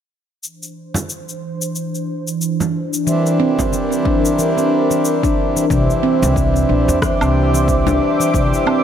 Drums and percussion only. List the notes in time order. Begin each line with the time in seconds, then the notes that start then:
0.44 shaker
0.63 shaker
0.94 frame drum, shaker
1.09 shaker
1.29 shaker
1.62 shaker
1.76 shaker
1.95 shaker
2.27 shaker
2.41 shaker
2.60 frame drum, shaker
2.93 shaker
3.07 shaker
3.26 shaker
3.59 kick, frame drum, shaker
3.73 shaker
3.92 shaker
4.05 kick
4.25 shaker
4.39 shaker
4.58 shaker
4.91 shaker
5.05 shaker
5.23 kick, shaker
5.57 shaker
5.70 kick, shaker
5.90 shaker
6.23 frame drum, shaker
6.36 kick, shaker
6.56 shaker
6.89 shaker
7.02 kick, cross-stick, shaker
7.21 low woodblock, shaker
7.55 shaker
7.68 kick, shaker
7.87 frame drum, shaker
8.21 shaker
8.34 kick, shaker
8.54 shaker
8.67 low woodblock